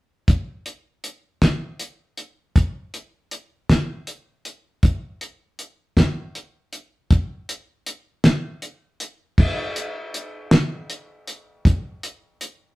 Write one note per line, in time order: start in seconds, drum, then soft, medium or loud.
0.28 kick medium
0.28 closed hi-hat medium
0.66 closed hi-hat medium
1.04 closed hi-hat medium
1.42 kick medium
1.42 snare medium
1.42 closed hi-hat medium
1.79 closed hi-hat medium
2.17 closed hi-hat soft
2.56 kick medium
2.56 closed hi-hat medium
2.94 closed hi-hat medium
3.31 closed hi-hat medium
3.69 kick medium
3.69 snare medium
3.69 closed hi-hat medium
4.07 closed hi-hat soft
4.45 closed hi-hat soft
4.83 kick medium
4.83 closed hi-hat medium
5.21 closed hi-hat soft
5.59 closed hi-hat soft
5.97 kick medium
5.97 snare medium
5.97 closed hi-hat medium
6.35 closed hi-hat medium
6.73 closed hi-hat soft
7.11 kick medium
7.11 closed hi-hat medium
7.49 closed hi-hat medium
7.86 closed hi-hat medium
8.24 snare medium
8.24 closed hi-hat medium
8.62 closed hi-hat medium
9.00 closed hi-hat medium
9.38 kick medium
9.38 crash medium
9.76 closed hi-hat medium
10.14 closed hi-hat medium
10.51 snare medium
10.51 closed hi-hat medium
10.90 closed hi-hat medium
11.27 closed hi-hat soft
11.65 kick medium
11.65 closed hi-hat medium
12.03 closed hi-hat medium
12.41 closed hi-hat medium